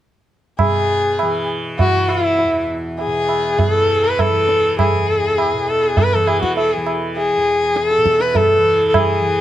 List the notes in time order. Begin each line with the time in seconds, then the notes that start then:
0.59 B2 G#4, tabla na, tabla ge
1.19 E3, tabla na
1.79 F#4, tabla tin, tabla ge
1.84 E3
2.09 E4, tabla na
2.39 tabla tin
2.44 E2
2.99 G#4, tabla tin
3.07 B2
3.29 tabla na
3.59 G#4, tabla tin, tabla ge
3.67 E3 A4
4.04 B4
4.19 A4, tabla na, tabla ge
4.29 E3
4.49 tabla te
4.79 G#4, tabla na, tabla ge
4.92 E2
5.38 tabla na
5.53 B2
5.69 A4
5.84 G#4
5.97 B4, tabla tin, tabla ge
6.14 E3 A4
6.27 G#4, tabla na
6.42 F#4, tabla ke
6.57 A4, tabla tin
6.72 E3 G#4
6.86 tabla na
7.17 G#4, tabla tin
7.37 E2
7.76 G#4, tabla te
7.88 A4, tabla te
7.98 B2
8.06 tabla ke
8.20 B4, tabla te
8.35 A4, tabla tin, tabla ge
8.59 E3
8.88 A4
8.94 G#4, tabla na, tabla ge
9.21 E3